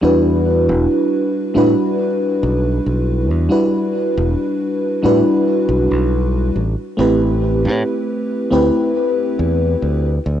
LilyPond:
<<
  \new Staff \with { instrumentName = "FM electric piano" } { \time 4/4 \key e \minor \tempo 4 = 69 <g d' e' fis' b'>4.~ <g d' e' fis' b'>16 <g d' e' fis' b'>2~ <g d' e' fis' b'>16 | <g d' e' fis' b'>4.~ <g d' e' fis' b'>16 <g d' e' fis' b'>4.~ <g d' e' fis' b'>16 r8 | <a c' e' g' b'>4.~ <a c' e' g' b'>16 <a c' e' g' b'>4.~ <a c' e' g' b'>16 r8 | }
  \new Staff \with { instrumentName = "Fingered electric bass" } { \clef bass \time 4/4 \key e \minor e,8. e,,16 r8. a,16 r8. b,,8 b,,8 e,16 | r8. e,,16 r8. a,16 r8 b,,16 b,,8. a,,16 r16 | a,,8. a,16 r8. d,16 r8. e,8 d,8 d,16 | }
>>